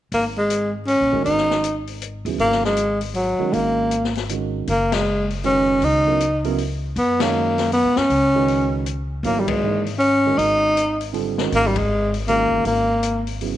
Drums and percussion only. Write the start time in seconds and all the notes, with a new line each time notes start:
0.12 open hi-hat
0.50 closed hi-hat
0.88 open hi-hat
1.26 open hi-hat
1.38 snare
1.51 snare
1.64 closed hi-hat
1.87 open hi-hat
2.02 closed hi-hat
2.26 open hi-hat
2.39 open hi-hat
2.52 snare
2.65 snare
2.77 closed hi-hat
3.01 open hi-hat
3.14 open hi-hat
3.53 open hi-hat
3.91 closed hi-hat
4.04 snare
4.15 snare, open hi-hat
4.29 closed hi-hat
4.67 open hi-hat
4.92 snare, ride
5.30 open hi-hat
5.44 open hi-hat
5.82 open hi-hat
6.20 closed hi-hat
6.44 open hi-hat
6.58 open hi-hat
6.96 open hi-hat
7.20 snare, ride
7.58 snare, open hi-hat
7.72 open hi-hat
7.96 snare
8.10 open hi-hat
8.48 open hi-hat
8.86 closed hi-hat
9.24 open hi-hat
9.48 kick, ride
9.86 open hi-hat
10.00 open hi-hat
10.39 open hi-hat
10.77 closed hi-hat
11.01 open hi-hat
11.14 open hi-hat
11.38 snare
11.52 open hi-hat
11.76 kick, ride
12.14 open hi-hat
12.28 open hi-hat
12.65 open hi-hat
13.03 closed hi-hat
13.27 open hi-hat
13.41 open hi-hat